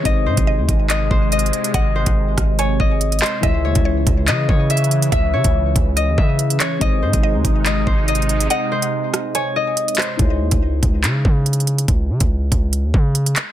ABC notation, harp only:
X:1
M:4/4
L:1/8
Q:1/4=142
K:C#m
V:1 name="Harp"
d ^B3 d B d2 | d ^B3 c d2 B | e c3 d c e2 | e c3 d e2 c |
d ^B3 d B d2 | d ^B3 c d2 B | z8 | z8 |]